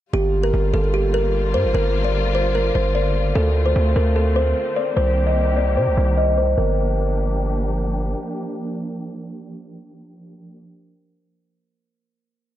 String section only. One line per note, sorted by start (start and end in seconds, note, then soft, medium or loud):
0.13 4.93 D3 medium
0.13 3.32 G3 medium
0.13 3.32 A#3 medium
0.13 4.93 F4 medium
3.35 4.95 A3 medium
3.35 6.54 C4 medium
4.97 6.56 D#3 medium
4.97 6.56 A#3 medium
4.97 6.56 G4 medium
6.58 10.56 F3 medium
6.58 10.56 A#3 medium
6.58 10.56 D4 medium
6.58 10.56 G4 medium